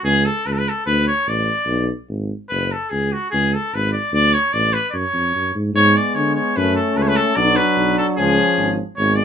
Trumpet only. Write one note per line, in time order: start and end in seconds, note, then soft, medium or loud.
0.04 0.27 G#4 loud
0.25 0.48 A4 medium
0.46 0.54 B4 medium
0.52 0.59 A4 medium
0.58 0.70 B4 medium
0.68 0.86 A4 medium
0.86 1.06 B4 loud
1.07 1.30 C#5 medium
1.28 1.89 D5 medium
2.49 2.73 B4 medium
2.72 2.91 A4 medium
2.90 3.14 G#4 medium
3.12 3.30 F#4 medium
3.31 3.55 G#4 medium
3.53 3.76 A4 medium
3.74 3.93 B4 medium
3.92 4.13 D5 medium
4.13 4.35 D5 loud
4.33 4.54 C#5 medium
4.53 4.75 D5 loud
4.74 4.88 B4 medium
4.90 5.55 C#5 loud
4.90 4.95 D5 medium
5.76 5.98 C#5 loud
5.96 6.16 D5 medium
6.15 6.34 C#5 medium
6.35 6.58 C#5 medium
6.57 6.75 B4 loud
6.76 6.99 A4 medium
6.97 7.04 B4 medium
7.02 7.09 C#5 medium
7.08 7.18 B4 loud
7.16 7.37 A4 medium
7.36 7.58 D5 loud
7.56 7.97 B4 medium
7.98 8.07 A4 medium
8.17 8.74 G#4 loud
8.97 9.17 C#5 medium
9.15 9.25 D5 medium